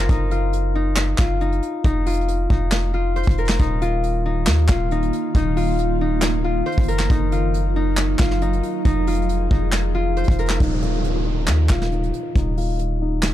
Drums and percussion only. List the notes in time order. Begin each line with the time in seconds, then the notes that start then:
0.09 kick, closed hi-hat
0.31 closed hi-hat
0.53 closed hi-hat
0.96 snare, clap, closed hi-hat
1.18 kick, snare, clap, closed hi-hat
1.41 closed hi-hat
1.52 closed hi-hat
1.63 closed hi-hat
1.84 kick, closed hi-hat
2.06 closed hi-hat, open hi-hat
2.14 closed hi-hat
2.21 closed hi-hat
2.28 closed hi-hat
2.50 kick
2.72 snare, clap, closed hi-hat
3.16 closed hi-hat
3.23 closed hi-hat
3.27 kick, closed hi-hat
3.38 closed hi-hat
3.45 clap, closed hi-hat
3.49 snare, closed hi-hat
3.60 kick, closed hi-hat
3.82 closed hi-hat
4.04 closed hi-hat
4.47 snare, clap, closed hi-hat
4.68 kick, snare, clap, closed hi-hat
4.91 closed hi-hat
5.03 closed hi-hat
5.13 closed hi-hat
5.35 kick, closed hi-hat
5.57 open hi-hat
5.79 closed hi-hat
6.22 snare, clap, closed hi-hat
6.66 closed hi-hat
6.72 closed hi-hat
6.78 kick, closed hi-hat
6.83 closed hi-hat
6.88 closed hi-hat
6.99 snare, clap
7.10 kick, closed hi-hat
7.32 closed hi-hat
7.54 closed hi-hat
7.97 snare, clap, closed hi-hat
8.19 kick, snare, clap, closed hi-hat
8.31 snare
8.41 closed hi-hat
8.53 closed hi-hat
8.63 closed hi-hat
8.85 kick, closed hi-hat
9.07 closed hi-hat, open hi-hat
9.14 closed hi-hat
9.22 closed hi-hat
9.29 closed hi-hat
9.51 kick
9.72 snare, clap, closed hi-hat
10.17 closed hi-hat
10.24 closed hi-hat
10.28 kick, closed hi-hat
10.38 closed hi-hat
10.46 clap, closed hi-hat
10.50 snare, closed hi-hat
10.60 kick, closed hi-hat
10.82 closed hi-hat
11.04 closed hi-hat
11.47 snare, clap, closed hi-hat
11.69 kick, snare, clap, closed hi-hat
11.82 snare
11.92 closed hi-hat
12.03 closed hi-hat
12.14 closed hi-hat
12.36 kick, closed hi-hat
12.57 open hi-hat
12.79 closed hi-hat
13.23 snare, clap, closed hi-hat